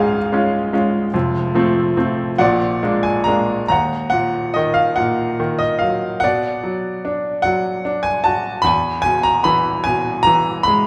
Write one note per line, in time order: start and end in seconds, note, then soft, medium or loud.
0.00 1.10 C#2 medium
0.00 1.11 G#2 medium
0.00 1.10 C#3 medium
0.00 0.33 G#3 medium
0.00 0.33 C#4 medium
0.00 1.16 D#4 medium
0.00 0.34 F4 medium
0.00 2.79 G#4 medium
0.00 1.16 D#5 loud
0.00 2.78 F5 medium
0.33 0.72 G#3 soft
0.33 0.72 C#4 soft
0.33 0.73 F4 medium
0.73 1.06 G#3 soft
0.73 1.06 C#4 soft
0.73 1.06 F4 soft
1.14 2.36 F1 soft
1.14 2.36 F2 medium
1.55 1.96 F3 medium
1.55 1.96 A3 soft
1.55 1.96 C4 medium
1.97 2.32 F3 soft
1.97 2.32 A3 soft
1.97 2.32 C4 soft
2.38 3.66 A#1 medium
2.38 3.66 A#2 medium
2.38 3.67 D5 medium
2.38 3.07 F#5 medium
2.83 3.25 G#3 soft
2.83 3.26 A#3 soft
2.83 3.26 D4 soft
3.03 3.27 G#5 medium
3.24 3.62 G#3 soft
3.24 3.62 A#3 soft
3.24 3.62 D4 soft
3.24 3.66 A#5 medium
3.68 6.19 D#2 soft
3.68 4.08 F#5 medium
3.68 4.14 A#5 medium
4.10 4.96 A#2 soft
4.10 4.56 F#5 medium
4.54 5.38 D#3 soft
4.54 4.77 D#5 medium
4.74 4.98 F5 medium
4.96 6.19 A#2 soft
4.96 5.62 F#5 medium
5.40 6.20 D#3 soft
5.59 5.81 D#5 medium
5.79 6.22 F#3 soft
5.79 6.23 F5 medium
6.20 8.62 B2 medium
6.20 7.42 D5 medium
6.20 7.41 F#5 medium
6.64 7.44 F#3 soft
7.05 7.83 D4 soft
7.42 8.62 F#3 medium
7.42 8.07 F#5 medium
7.85 8.63 D4 soft
8.03 8.25 G#5 medium
8.24 8.64 F#4 soft
8.24 8.62 A5 medium
8.62 10.87 E2 medium
8.62 9.05 B5 medium
8.66 9.00 G#5 medium
9.02 9.85 B2 medium
9.02 9.24 G#5 medium
9.23 9.45 A#5 medium
9.44 10.25 E3 medium
9.44 9.86 B5 medium
9.84 10.87 B2 medium
9.84 10.27 G#5 medium
10.23 10.87 E3 soft
10.23 10.66 A#5 loud
10.63 10.87 B5 medium
10.68 10.87 G#3 soft